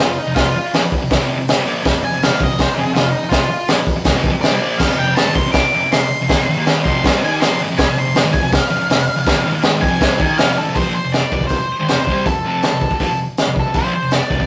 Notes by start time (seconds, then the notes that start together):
0.00 F2 C3 F4
0.18 D#4
0.27 F2 C3
0.35 F2 C3 F4, kick, snare, open hi-hat
0.56 muted distorted electric guitar stroke
0.74 A#2 F3, snare, open hi-hat
0.84 muted distorted electric guitar stroke
0.92 kick
1.02 F2 C3
1.11 F2 C3, kick, snare, open hi-hat
1.20 F2 C3 F3
1.38 F2 C3
1.47 muted distorted electric guitar stroke, snare, open hi-hat
1.56 C3 G3
1.65 A#2 F3 A#3
1.82 F2 C3, kick, open hi-hat
1.86 snare
1.93 F2 C3
2.02 F2 C3 G#5
2.12 F2 C3
2.23 F2 C3 F5, snare, open hi-hat
2.31 G#2 D#3
2.40 F2 C3 D#5, kick
2.51 F2 C3
2.59 C5, kick, snare, open hi-hat
2.74 F2 G#4
2.79 C3
2.86 F2 C3
2.93 F2 C3 F4, snare, open hi-hat
3.12 D#4
3.23 F2 C3
3.29 F2 C3 F4, kick, snare, open hi-hat
3.49 muted distorted electric guitar stroke
3.68 A#2 F3, snare, open hi-hat
3.78 muted distorted electric guitar stroke
3.87 kick
3.96 F2 C3
4.04 F2 C3, kick, snare, open hi-hat
4.14 F2 C3 F3
4.24 kick
4.32 F2 C3
4.41 D5, muted distorted electric guitar stroke, snare, open hi-hat
4.51 C3 G3
4.60 A#2 F3 A#3
4.78 F2 C3 F5, kick, snare, crash
4.90 F2 C3
4.98 F2 C3 G5
5.07 F2 C3
5.14 F2 C3 A5, snare, open hi-hat
5.26 G#2 D#3
5.35 F2 C3 C6, kick
5.46 F2 C3
5.52 D6, kick, snare, open hi-hat
5.74 F2 C3
5.84 F2 C3
5.92 F2 C3 C6, snare, open hi-hat
6.22 F2 C3
6.29 D#3 A#3, kick, snare, open hi-hat
6.38 F2 C3
6.48 G#2 D#3
6.57 D#3 A#3
6.66 G#2 D#3 G#3, snare, open hi-hat
6.84 F2 C3 F3 C6, kick
7.04 C3 G3 C4, kick, snare, open hi-hat
7.22 D#3 A#3 D#4 G#5
7.40 F2 C3 F3 C6, snare, open hi-hat
7.60 G#2 D#3
7.70 F2 C3
7.78 F2 C3 G#5, kick, snare, open hi-hat
7.88 F2 C3
7.97 F2 C3 C6
8.05 F2 C3
8.14 F2 C3, snare, open hi-hat
8.23 G#2 D#3
8.33 F2 C3 G#5, kick
8.43 F2 C3
8.53 F5, kick, snare, open hi-hat
8.70 F2 C3
8.78 F2 C3
8.90 F2 C3, snare, open hi-hat
9.16 F2 C3
9.27 D#3 A#3, kick, snare, open hi-hat
9.35 F2 C3
9.46 G#2 D#3
9.53 D#3 A#3
9.62 G#2 D#3 G#3, snare, open hi-hat
9.81 F2 C3 F3 G#5, kick
10.00 C3 G3 C4, kick, snare, open hi-hat
10.19 D#3 A#3 D#4, kick
10.38 F2 C3 F3 F5, snare, open hi-hat
10.57 G#2 D#3 A4
10.68 F2 C3
10.75 F2 C3 C5, kick, open hi-hat
10.86 A#2 F3
10.95 C5, muted distorted electric guitar stroke
11.04 F2 C3
11.12 D5, snare, open hi-hat
11.32 F2 C3, kick
11.41 F2 C3, kick
11.47 C5, kick, open hi-hat
11.53 F2 C3
11.79 G#2 D#3
11.88 F2 C3 C5, snare, open hi-hat
11.98 F2 C3
12.07 C3 G3 C4, kick
12.26 F2 C3 A4, kick, open hi-hat
12.45 F2 C3 F3 A4
12.63 muted distorted electric guitar stroke, snare, open hi-hat
12.72 F2 C3
12.81 muted distorted electric guitar stroke, kick
12.91 kick
13.00 A#2 F3, kick, open hi-hat
13.10 F2 C3
13.37 snare, open hi-hat
13.46 F2 C3
13.56 A4, kick
13.67 F2 C3
13.74 F2 C3 C5, kick, open hi-hat
13.84 A#2 F3
13.94 C5, muted distorted electric guitar stroke
14.03 F2 C3
14.11 D5, snare, open hi-hat
14.29 F2 C3, kick
14.39 F2 C3, kick